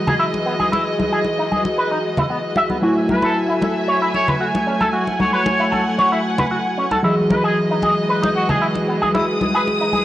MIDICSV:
0, 0, Header, 1, 6, 480
1, 0, Start_track
1, 0, Tempo, 526316
1, 659, Time_signature, 4, 2, 24, 8
1, 9165, End_track
2, 0, Start_track
2, 0, Title_t, "Trumpet section"
2, 0, Program_c, 0, 61
2, 2819, Note_on_c, 0, 71, 80
2, 2920, Note_off_c, 0, 71, 0
2, 2948, Note_on_c, 0, 69, 81
2, 3066, Note_off_c, 0, 69, 0
2, 3782, Note_on_c, 0, 73, 81
2, 3912, Note_off_c, 0, 73, 0
2, 4740, Note_on_c, 0, 73, 81
2, 4840, Note_off_c, 0, 73, 0
2, 4866, Note_on_c, 0, 73, 86
2, 5346, Note_off_c, 0, 73, 0
2, 6658, Note_on_c, 0, 71, 82
2, 6759, Note_off_c, 0, 71, 0
2, 6785, Note_on_c, 0, 68, 83
2, 6904, Note_off_c, 0, 68, 0
2, 7618, Note_on_c, 0, 66, 82
2, 7720, Note_off_c, 0, 66, 0
2, 7744, Note_on_c, 0, 68, 87
2, 7864, Note_off_c, 0, 68, 0
2, 8704, Note_on_c, 0, 71, 84
2, 8824, Note_off_c, 0, 71, 0
2, 9165, End_track
3, 0, Start_track
3, 0, Title_t, "Clean electric guitar"
3, 0, Program_c, 1, 27
3, 64, Note_on_c, 1, 68, 91
3, 122, Note_off_c, 1, 68, 0
3, 177, Note_on_c, 1, 64, 93
3, 216, Note_off_c, 1, 64, 0
3, 418, Note_on_c, 1, 59, 70
3, 482, Note_off_c, 1, 59, 0
3, 544, Note_on_c, 1, 68, 90
3, 601, Note_off_c, 1, 68, 0
3, 659, Note_on_c, 1, 64, 73
3, 753, Note_off_c, 1, 64, 0
3, 899, Note_on_c, 1, 52, 66
3, 937, Note_off_c, 1, 52, 0
3, 1027, Note_on_c, 1, 68, 89
3, 1083, Note_off_c, 1, 68, 0
3, 1265, Note_on_c, 1, 63, 67
3, 1300, Note_off_c, 1, 63, 0
3, 1383, Note_on_c, 1, 68, 65
3, 1475, Note_off_c, 1, 68, 0
3, 1622, Note_on_c, 1, 71, 72
3, 1715, Note_off_c, 1, 71, 0
3, 1746, Note_on_c, 1, 63, 86
3, 1803, Note_off_c, 1, 63, 0
3, 1986, Note_on_c, 1, 64, 67
3, 2020, Note_off_c, 1, 64, 0
3, 2098, Note_on_c, 1, 59, 73
3, 2162, Note_off_c, 1, 59, 0
3, 2341, Note_on_c, 1, 76, 89
3, 2403, Note_off_c, 1, 76, 0
3, 2464, Note_on_c, 1, 59, 68
3, 2522, Note_off_c, 1, 59, 0
3, 2579, Note_on_c, 1, 66, 71
3, 2673, Note_off_c, 1, 66, 0
3, 2817, Note_on_c, 1, 54, 64
3, 2856, Note_off_c, 1, 54, 0
3, 2942, Note_on_c, 1, 71, 92
3, 3000, Note_off_c, 1, 71, 0
3, 3180, Note_on_c, 1, 64, 68
3, 3217, Note_off_c, 1, 64, 0
3, 3298, Note_on_c, 1, 69, 65
3, 3393, Note_off_c, 1, 69, 0
3, 3538, Note_on_c, 1, 73, 73
3, 3633, Note_off_c, 1, 73, 0
3, 3666, Note_on_c, 1, 64, 90
3, 3723, Note_off_c, 1, 64, 0
3, 3905, Note_on_c, 1, 71, 91
3, 3962, Note_off_c, 1, 71, 0
3, 4018, Note_on_c, 1, 66, 88
3, 4057, Note_off_c, 1, 66, 0
3, 4258, Note_on_c, 1, 61, 68
3, 4322, Note_off_c, 1, 61, 0
3, 4384, Note_on_c, 1, 69, 91
3, 4442, Note_off_c, 1, 69, 0
3, 4497, Note_on_c, 1, 66, 72
3, 4593, Note_off_c, 1, 66, 0
3, 4735, Note_on_c, 1, 54, 69
3, 4775, Note_off_c, 1, 54, 0
3, 4861, Note_on_c, 1, 71, 87
3, 4920, Note_off_c, 1, 71, 0
3, 5102, Note_on_c, 1, 64, 67
3, 5138, Note_off_c, 1, 64, 0
3, 5214, Note_on_c, 1, 69, 66
3, 5311, Note_off_c, 1, 69, 0
3, 5456, Note_on_c, 1, 73, 74
3, 5552, Note_off_c, 1, 73, 0
3, 5583, Note_on_c, 1, 64, 90
3, 5641, Note_off_c, 1, 64, 0
3, 5823, Note_on_c, 1, 71, 94
3, 5881, Note_off_c, 1, 71, 0
3, 5939, Note_on_c, 1, 66, 89
3, 5977, Note_off_c, 1, 66, 0
3, 6180, Note_on_c, 1, 61, 68
3, 6243, Note_off_c, 1, 61, 0
3, 6306, Note_on_c, 1, 69, 92
3, 6363, Note_off_c, 1, 69, 0
3, 6422, Note_on_c, 1, 64, 73
3, 6515, Note_off_c, 1, 64, 0
3, 6660, Note_on_c, 1, 52, 66
3, 6697, Note_off_c, 1, 52, 0
3, 6785, Note_on_c, 1, 68, 93
3, 6842, Note_off_c, 1, 68, 0
3, 7029, Note_on_c, 1, 63, 70
3, 7061, Note_off_c, 1, 63, 0
3, 7142, Note_on_c, 1, 68, 68
3, 7235, Note_off_c, 1, 68, 0
3, 7380, Note_on_c, 1, 71, 75
3, 7474, Note_off_c, 1, 71, 0
3, 7502, Note_on_c, 1, 63, 94
3, 7561, Note_off_c, 1, 63, 0
3, 7743, Note_on_c, 1, 68, 96
3, 7801, Note_off_c, 1, 68, 0
3, 7858, Note_on_c, 1, 64, 91
3, 7897, Note_off_c, 1, 64, 0
3, 8101, Note_on_c, 1, 59, 68
3, 8163, Note_off_c, 1, 59, 0
3, 8224, Note_on_c, 1, 68, 90
3, 8282, Note_off_c, 1, 68, 0
3, 8340, Note_on_c, 1, 64, 75
3, 8434, Note_off_c, 1, 64, 0
3, 8580, Note_on_c, 1, 52, 70
3, 8618, Note_off_c, 1, 52, 0
3, 8707, Note_on_c, 1, 68, 95
3, 8763, Note_off_c, 1, 68, 0
3, 8945, Note_on_c, 1, 63, 71
3, 8979, Note_off_c, 1, 63, 0
3, 9057, Note_on_c, 1, 68, 66
3, 9152, Note_off_c, 1, 68, 0
3, 9165, End_track
4, 0, Start_track
4, 0, Title_t, "String section"
4, 0, Program_c, 2, 48
4, 0, Note_on_c, 2, 52, 65
4, 0, Note_on_c, 2, 56, 71
4, 0, Note_on_c, 2, 66, 64
4, 0, Note_on_c, 2, 75, 76
4, 2540, Note_off_c, 2, 56, 0
4, 2540, Note_off_c, 2, 75, 0
4, 2542, Note_off_c, 2, 52, 0
4, 2574, Note_on_c, 2, 76, 78
4, 2576, Note_on_c, 2, 57, 70
4, 2576, Note_on_c, 2, 80, 65
4, 4478, Note_off_c, 2, 76, 0
4, 4497, Note_on_c, 2, 78, 79
4, 6381, Note_off_c, 2, 57, 0
4, 6381, Note_off_c, 2, 80, 0
4, 6385, Note_off_c, 2, 66, 0
4, 6399, Note_off_c, 2, 78, 0
4, 6422, Note_on_c, 2, 52, 65
4, 6422, Note_on_c, 2, 75, 77
4, 6423, Note_on_c, 2, 56, 72
4, 6424, Note_on_c, 2, 66, 65
4, 8321, Note_off_c, 2, 75, 0
4, 8343, Note_on_c, 2, 87, 80
4, 9165, Note_off_c, 2, 52, 0
4, 9165, Note_off_c, 2, 56, 0
4, 9165, Note_off_c, 2, 66, 0
4, 9165, Note_off_c, 2, 87, 0
4, 9165, End_track
5, 0, Start_track
5, 0, Title_t, "Tine electric piano"
5, 0, Program_c, 3, 4
5, 0, Note_on_c, 3, 52, 64
5, 0, Note_on_c, 3, 54, 71
5, 0, Note_on_c, 3, 68, 77
5, 0, Note_on_c, 3, 75, 62
5, 2548, Note_off_c, 3, 54, 0
5, 2551, Note_off_c, 3, 75, 0
5, 2554, Note_off_c, 3, 52, 0
5, 2557, Note_off_c, 3, 68, 0
5, 2569, Note_on_c, 3, 54, 69
5, 2574, Note_on_c, 3, 57, 63
5, 2582, Note_on_c, 3, 64, 64
5, 2587, Note_on_c, 3, 80, 75
5, 6387, Note_off_c, 3, 54, 0
5, 6389, Note_off_c, 3, 57, 0
5, 6393, Note_off_c, 3, 64, 0
5, 6396, Note_off_c, 3, 80, 0
5, 6407, Note_on_c, 3, 54, 72
5, 6415, Note_on_c, 3, 75, 63
5, 6420, Note_on_c, 3, 52, 66
5, 6427, Note_on_c, 3, 68, 79
5, 9165, Note_off_c, 3, 52, 0
5, 9165, Note_off_c, 3, 54, 0
5, 9165, Note_off_c, 3, 68, 0
5, 9165, Note_off_c, 3, 75, 0
5, 9165, End_track
6, 0, Start_track
6, 0, Title_t, "Drums"
6, 67, Note_on_c, 9, 64, 85
6, 158, Note_off_c, 9, 64, 0
6, 310, Note_on_c, 9, 62, 44
6, 401, Note_off_c, 9, 62, 0
6, 546, Note_on_c, 9, 63, 57
6, 638, Note_off_c, 9, 63, 0
6, 666, Note_on_c, 9, 62, 70
6, 757, Note_off_c, 9, 62, 0
6, 908, Note_on_c, 9, 63, 72
6, 999, Note_off_c, 9, 63, 0
6, 1136, Note_on_c, 9, 62, 44
6, 1227, Note_off_c, 9, 62, 0
6, 1386, Note_on_c, 9, 63, 61
6, 1477, Note_off_c, 9, 63, 0
6, 1505, Note_on_c, 9, 62, 61
6, 1596, Note_off_c, 9, 62, 0
6, 1982, Note_on_c, 9, 64, 85
6, 1988, Note_on_c, 9, 62, 44
6, 2073, Note_off_c, 9, 64, 0
6, 2079, Note_off_c, 9, 62, 0
6, 2333, Note_on_c, 9, 62, 59
6, 2424, Note_off_c, 9, 62, 0
6, 2460, Note_on_c, 9, 63, 54
6, 2551, Note_off_c, 9, 63, 0
6, 2820, Note_on_c, 9, 63, 74
6, 2911, Note_off_c, 9, 63, 0
6, 2939, Note_on_c, 9, 62, 47
6, 3031, Note_off_c, 9, 62, 0
6, 3298, Note_on_c, 9, 63, 60
6, 3304, Note_on_c, 9, 62, 71
6, 3389, Note_off_c, 9, 63, 0
6, 3395, Note_off_c, 9, 62, 0
6, 3779, Note_on_c, 9, 62, 42
6, 3870, Note_off_c, 9, 62, 0
6, 3904, Note_on_c, 9, 64, 80
6, 3995, Note_off_c, 9, 64, 0
6, 4149, Note_on_c, 9, 62, 70
6, 4240, Note_off_c, 9, 62, 0
6, 4385, Note_on_c, 9, 63, 57
6, 4476, Note_off_c, 9, 63, 0
6, 4626, Note_on_c, 9, 62, 42
6, 4718, Note_off_c, 9, 62, 0
6, 4742, Note_on_c, 9, 63, 75
6, 4833, Note_off_c, 9, 63, 0
6, 4980, Note_on_c, 9, 62, 75
6, 5071, Note_off_c, 9, 62, 0
6, 5221, Note_on_c, 9, 63, 59
6, 5312, Note_off_c, 9, 63, 0
6, 5461, Note_on_c, 9, 62, 49
6, 5553, Note_off_c, 9, 62, 0
6, 5822, Note_on_c, 9, 62, 66
6, 5827, Note_on_c, 9, 64, 79
6, 5913, Note_off_c, 9, 62, 0
6, 5918, Note_off_c, 9, 64, 0
6, 6303, Note_on_c, 9, 62, 46
6, 6306, Note_on_c, 9, 63, 59
6, 6394, Note_off_c, 9, 62, 0
6, 6397, Note_off_c, 9, 63, 0
6, 6661, Note_on_c, 9, 63, 70
6, 6662, Note_on_c, 9, 62, 79
6, 6752, Note_off_c, 9, 63, 0
6, 6753, Note_off_c, 9, 62, 0
6, 7134, Note_on_c, 9, 63, 60
6, 7138, Note_on_c, 9, 62, 49
6, 7226, Note_off_c, 9, 63, 0
6, 7229, Note_off_c, 9, 62, 0
6, 7510, Note_on_c, 9, 62, 76
6, 7601, Note_off_c, 9, 62, 0
6, 7745, Note_on_c, 9, 64, 87
6, 7836, Note_off_c, 9, 64, 0
6, 7982, Note_on_c, 9, 62, 49
6, 8073, Note_off_c, 9, 62, 0
6, 8232, Note_on_c, 9, 63, 52
6, 8323, Note_off_c, 9, 63, 0
6, 8343, Note_on_c, 9, 62, 77
6, 8434, Note_off_c, 9, 62, 0
6, 8583, Note_on_c, 9, 63, 76
6, 8674, Note_off_c, 9, 63, 0
6, 8823, Note_on_c, 9, 62, 46
6, 8914, Note_off_c, 9, 62, 0
6, 9054, Note_on_c, 9, 63, 55
6, 9146, Note_off_c, 9, 63, 0
6, 9165, End_track
0, 0, End_of_file